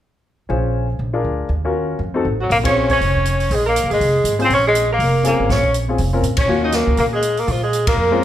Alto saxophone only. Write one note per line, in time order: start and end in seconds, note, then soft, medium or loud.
2.41 2.50 F#4 medium
2.52 2.58 A#4 medium
2.65 2.88 C#5 medium
2.91 3.54 C#5 medium
3.52 3.65 G#4 medium
3.66 3.88 A#4 medium
3.90 4.36 G#4 medium
4.42 4.50 C5 medium
4.54 4.65 C#5 medium
4.67 4.89 G#4 medium
4.92 5.24 A#4 medium
5.27 5.52 A#4 medium
5.50 5.75 C#5 medium
6.38 6.61 C#5 medium
6.64 6.77 D#5 medium
6.75 6.98 A#4 medium
6.98 7.05 A#4 medium
7.13 7.41 G#4 medium
7.40 7.50 A#4 medium
7.48 7.62 F4 medium
7.63 7.86 G#4 medium
7.88 8.24 A#4 medium